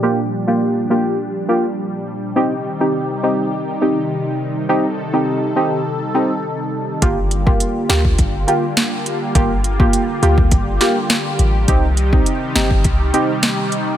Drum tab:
HH |----------------|----------------|----------------|x-x-x-x-x-x-x-x-|
SD |----------------|----------------|----------------|------o-----o---|
BD |----------------|----------------|----------------|o--o---oo-------|

HH |x-x-x-x-x-x-x-x-|x-x-x-x-x-x-x-x-|
SD |----------o-o---|------o-----o---|
BD |o--o---oo-------|o--o---oo-------|